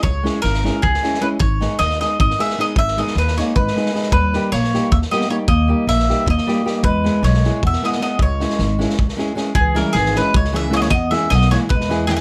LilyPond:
<<
  \new Staff \with { instrumentName = "Mandolin" } { \time 7/8 \tempo 4 = 154 cis''4 ais'4 gis'4 b'8 | cis''4 dis''8 dis''8 dis''8 e''8 dis''8 | e''8 dis''8 b'8 cis''8 b'4. | b'4 cis''4 e''8 dis''8 cis''8 |
dis''4 e''4 dis''4. | b'4 cis''4 e''8 dis''8 dis''8 | cis''2~ cis''8 r4 | gis'8 ais'8 gis'8 b'8 cis''8 e''8 cis''32 dis''32 cis''16 |
dis''8 e''8 dis''8 cis''8 b'4 gis'32 g'32 gis'16 | }
  \new Staff \with { instrumentName = "Nylon-string guitar" } { \time 7/8 r8 <gis cis' e' gis'>8 r8 <gis cis' e' gis'>8 r8 <gis cis' e' gis'>8 <gis cis' e' gis'>8 | r8 <gis b dis' gis'>8 r8 <gis b dis' gis'>8 r8 <gis b dis' gis'>8 <gis b dis' gis'>8 | r8 <gis b dis' gis'>8 r8 <gis b dis' gis'>8 r8 <gis b dis' gis'>8 <gis b dis' gis'>8 | r8 <g ais dis' g'>8 r8 <g ais dis' g'>8 r8 <g ais dis' g'>8 <g ais dis' g'>8 |
r8 <g ais dis' g'>8 r8 <g ais dis' g'>8 r8 <g ais dis' g'>8 <g ais dis' g'>8 | r8 <gis b e' gis'>8 r8 <gis b e' gis'>8 r8 <gis b e' gis'>8 <gis b e' gis'>8 | r8 <gis cis' e' gis'>8 r8 <gis cis' e' gis'>8 r8 <gis cis' e' gis'>8 <gis cis' e' gis'>8 | r8 <e gis cis' e' gis'>8 r8 <e gis cis' e' gis'>8 r8 <e gis cis' e' gis'>8 <e gis cis' e' gis'>8 |
r8 <e gis b e' gis'>8 r8 <e gis b e' gis'>8 r8 <e gis b e' gis'>8 <e gis b e' gis'>8 | }
  \new Staff \with { instrumentName = "Clarinet" } { \time 7/8 r2. r8 | r2. r8 | r4. ais8 gis4. | g4 ais4 ais8 b8 ais8 |
ais4 ais4 ais4. | gis4 gis4 b8 b8 b8 | gis2~ gis8 r4 | e8 g8 e8 gis8 gis8 cis'8 ais32 b32 ais16 |
b8 cis'8 b8 ais8 gis4 e32 dis32 r16 | }
  \new Staff \with { instrumentName = "Upright bass" } { \clef bass \time 7/8 cis,4 gis,,4 cis,8 r4 | gis,,4 dis,4 gis,,8 r4 | gis,,4 dis,4 gis,,8 r4 | dis,4 ais,,4 dis,8 r4 |
dis,4 ais,,4 dis,8 r4 | e,4 b,,4 e,8 r4 | cis,4 gis,,4 cis,8 r4 | cis,4 gis,,4 cis,4. |
e,4 b,,4 e,4. | }
  \new DrumStaff \with { instrumentName = "Drums" } \drummode { \time 7/8 bd8 sn8 sn16 sn16 sn8 bd16 sn16 sn16 sn8. | bd8 sn8 sn16 sn16 sn8 bd16 sn16 sn16 sn16 sn8 | bd16 sn16 sn16 sn16 sn16 sn16 sn8 bd16 sn16 sn16 sn16 sn16 sn16 | bd8 sn8 sn16 sn16 sn8 bd16 sn16 sn16 sn8. |
bd4 sn16 sn16 sn8 bd16 sn16 sn8 sn8 | bd8 sn8 sn16 sn16 sn8 bd16 sn16 sn16 sn16 sn8 | bd8 sn16 sn16 sn8 sn16 sn16 bd16 sn16 sn8 sn8 | bd8 sn8 sn16 sn16 sn8 bd16 sn16 sn8 sn16 sn16 |
bd8 sn8 sn16 sn16 sn8 bd16 sn16 sn8 sn16 sn16 | }
>>